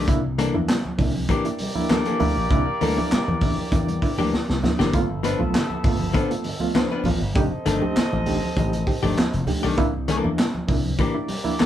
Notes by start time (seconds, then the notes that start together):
0.08 C2 A#3 D4 E4, kick, closed hi-hat, muted conga
0.38 C3 E3 G3 A#3 D4 A4, closed hi-hat, muted conga
0.54 E2 A#3 D4 E4, high conga
0.68 C3 G3, snare, clap, closed hi-hat, muted conga
0.86 high conga
0.98 C2 A#3 D4 E4, kick, open hi-hat, muted conga, low conga
1.14 D4 E4, high conga
1.29 E3 A#3 D4 G4 D5, kick, closed hi-hat
1.45 A#3 D4 E4, closed hi-hat
1.59 C3 G3, open hi-hat, muted conga
1.75 A#3 D4 E4, high conga
1.89 E3 A#3 D4 A4, snare, clap, closed hi-hat, muted conga, high conga
2.06 E3 A#3 D4 A4, closed hi-hat
2.20 D2 A#3 D4 E4, open hi-hat, muted conga, high conga, low conga
2.37 A#1
2.50 C2 A#3 D4 E4, kick, closed hi-hat, low conga
2.81 D2 C3 E3 G3 A#3 D4 A4, open hi-hat, muted conga
2.97 A#3 D4 E4, high conga
3.11 C3 G3, muted slap bass stroke, snare, clap, closed hi-hat
3.28 E2, high conga
3.41 A#3 D4 E4, kick, open hi-hat, low conga
3.58 D4 E4, high conga
3.72 E2 D4 E4, kick, closed hi-hat, muted conga
3.88 C3 G3, closed hi-hat
4.02 D4 E4, kick, open hi-hat, muted conga
4.18 D2 E3 A#3 D4 G4, high conga
4.32 D4 E4, muted slap bass stroke, snare, high conga
4.49 C2 C3 G3, snare
4.63 A#3 D4 E4, snare, muted conga, high conga, low conga
4.79 F#1 E3 A#3 D4 G4, snare
4.93 G1 A3 B3 F4 A4 E5, kick, closed hi-hat, muted conga
5.23 G2 D3 F3 B3 D4 B4, closed hi-hat, muted conga
5.39 B1 A3 B3 F4, high conga
5.53 G2 D3, snare, clap, closed hi-hat
5.70 high conga
5.83 G1 A3 B3 F4, kick, open hi-hat, muted conga, low conga
6.00 B3 F4, high conga
6.13 F3 B3 D4 A4, kick, closed hi-hat, muted conga
6.31 A3 B3 F4, closed hi-hat
6.44 G2 D3, open hi-hat, muted conga
6.60 A3 B3 F4, high conga
6.75 F3 B3 D4 B4, snare, clap, closed hi-hat, high conga
6.91 F3 B3 D4 B4
7.04 A1 A3 B3 F4, open hi-hat, muted conga, high conga, low conga
7.22 G1
7.35 F1 A3 C4 D4 D#4 G4 A4 D#5, kick, closed hi-hat
7.65 G1 D#3 F3 A3 D4 A4, closed hi-hat, muted conga
7.81 A3 D4 D#4 G4, high conga
7.96 F3, muted slap bass stroke, snare, clap, closed hi-hat, muted conga
8.13 A1, high conga
8.26 A3 D4 D#4 G4, open hi-hat, muted conga, low conga
8.43 D#4 G4, high conga
8.57 A1 D#4 G4, kick, closed hi-hat
8.73 F3, closed hi-hat
8.87 D#4 G4, kick, open hi-hat, muted conga
9.03 G1 D#3 A3 D4 G4, high conga
9.17 D#4 G4, snare, clap, closed hi-hat, muted conga, high conga
9.32 F1 F3, closed hi-hat
9.47 A3 D4 D#4 G4, open hi-hat, muted conga, high conga, low conga
9.63 B1 D#3 A3 D4 G4
9.78 C2 A#3 D4 E4, kick, closed hi-hat
10.07 C3 E3 G3 A#3 D4 A4, closed hi-hat, muted conga
10.24 E2 A#3 D4 E4, high conga
10.38 C3 G3, snare, clap, closed hi-hat, muted conga
10.55 high conga
10.68 C2 A#3 D4 E4, kick, open hi-hat, muted conga, low conga
10.84 D4 E4, high conga
10.99 E3 A#3 D4 G4 D5, kick, closed hi-hat, muted conga
11.14 A#3 D4 E4
11.28 C3 G3, open hi-hat, muted conga
11.44 A#3 D4 E4, high conga
11.59 E3 A#3 D4 A4, snare, clap, closed hi-hat, muted conga, high conga